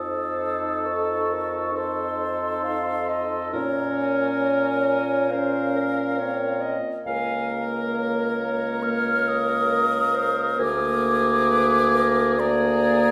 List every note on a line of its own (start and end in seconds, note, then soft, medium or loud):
0.00 3.49 F2 soft
0.00 1.71 D#4 soft
0.00 1.71 A4 soft
0.00 0.88 C5 medium
0.00 0.87 D#6 medium
0.86 1.33 A4 soft
0.86 1.77 C#6 medium
1.32 1.78 A#4 soft
1.74 3.49 D#4 medium
1.74 3.50 A4 soft
1.74 2.20 C5 soft
1.74 3.53 C6 medium
2.20 2.66 C5 soft
2.64 3.11 F5 medium
3.09 3.54 D#5 medium
3.53 6.75 A#2 medium
3.53 5.27 C#4 medium
3.53 5.27 A#4 medium
3.53 5.32 C#5 medium
3.53 3.97 A#5 medium
3.99 5.32 G#5 medium
5.30 6.20 C#4 medium
5.30 6.77 A#4 medium
5.30 5.75 C5 medium
5.30 6.79 F5 medium
5.76 6.20 A#4 medium
6.18 6.80 C4 soft
6.18 6.63 C#5 medium
6.62 6.93 D#5 medium
7.06 10.56 C#2 medium
7.06 8.79 A#3 medium
7.06 8.78 A#4 medium
7.06 7.66 F5 medium
7.06 7.51 G#5 medium
7.50 8.84 A#5 medium
7.94 9.67 C#5 medium
8.82 10.57 A#3 medium
8.82 10.57 A#4 medium
8.82 9.30 F6 medium
9.28 10.61 D#6 loud
9.72 10.16 A#4 medium
10.15 10.61 C5 medium
10.59 13.11 D2 medium
10.59 12.36 A#3 medium
10.59 12.36 G#4 medium
10.59 11.52 A#4 medium
10.59 12.41 D6 loud
11.51 11.97 B4 medium
11.95 12.40 A#4 medium
12.38 13.11 A#3 medium
12.38 13.11 G#4 medium
12.38 13.11 D5 medium
12.38 13.11 A#5 loud